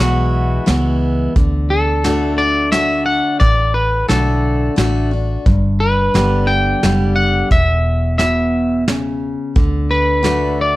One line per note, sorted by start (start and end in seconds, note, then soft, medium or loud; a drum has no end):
0.00 0.58 B1 loud
0.00 0.61 E2 medium
0.00 0.64 E3 medium
0.00 0.64 G#3 medium
0.00 0.65 B3 loud
0.00 0.65 E4 loud
0.00 0.96 F#4 medium
0.66 1.26 C#2 medium
0.66 1.32 E3 medium
0.66 1.32 G#3 medium
0.66 1.33 B3 medium
0.66 1.33 E4 medium
0.66 snare medium
0.66 closed hi-hat medium
1.36 3.20 D2 medium
1.36 2.03 D3 medium
1.36 kick loud
1.36 closed hi-hat medium
1.70 2.41 A4 medium
2.04 2.69 D3 medium
2.04 2.70 A3 medium
2.04 2.70 D4 loud
2.04 2.70 F#4 loud
2.04 snare medium
2.04 closed hi-hat medium
2.38 2.71 D5 loud
2.72 3.37 D3 medium
2.72 3.38 A3 medium
2.72 3.38 D4 loud
2.72 3.38 F#4 loud
2.72 3.05 E5 loud
2.72 snare medium
2.72 closed hi-hat medium
3.06 3.39 F#5 loud
3.40 4.03 A1 medium
3.40 4.71 A2 medium
3.40 3.72 D5 loud
3.40 kick loud
3.40 closed hi-hat medium
3.74 4.08 B4 medium
4.08 4.68 B1 medium
4.08 4.74 D3 medium
4.08 4.75 A3 medium
4.08 4.75 D4 medium
4.08 4.75 F#4 loud
4.08 5.08 A4 medium
4.08 snare medium
4.08 closed hi-hat medium
4.76 5.36 A1 medium
4.76 5.10 D3 medium
4.76 5.10 A3 medium
4.76 5.11 D4 medium
4.76 5.10 F#4 loud
4.76 snare medium
4.76 closed hi-hat medium
5.11 5.46 D4 soft
5.11 5.45 F#4 medium
5.46 6.08 G1 medium
5.46 6.76 G2 medium
5.46 kick loud
5.46 closed hi-hat medium
5.80 6.51 B4 loud
6.14 6.73 G1 medium
6.14 6.79 D3 medium
6.14 6.80 G3 medium
6.14 6.80 B3 medium
6.14 6.80 G4 medium
6.14 snare medium
6.14 closed hi-hat medium
6.47 7.15 G5 loud
6.83 7.41 F#1 medium
6.83 7.48 D3 medium
6.83 7.48 G3 medium
6.83 7.48 B3 medium
6.83 7.49 G4 medium
6.83 snare medium
6.83 closed hi-hat medium
7.16 7.48 F#5 loud
7.51 9.35 E1 medium
7.51 8.81 E2 medium
7.51 8.16 E5 loud
7.51 kick loud
7.51 closed hi-hat medium
8.18 8.84 B2 medium
8.18 8.83 E5 medium
8.18 snare medium
8.18 closed hi-hat medium
8.88 9.53 C#3 medium
8.88 snare medium
8.88 closed hi-hat medium
9.56 10.76 D2 medium
9.56 10.22 D3 medium
9.56 kick loud
9.56 closed hi-hat medium
9.91 10.61 B4 medium
10.23 10.76 D3 loud
10.23 10.76 A3 loud
10.23 10.76 D4 medium
10.23 10.76 F#4 loud
10.23 snare medium
10.23 closed hi-hat medium
10.61 10.76 D5 medium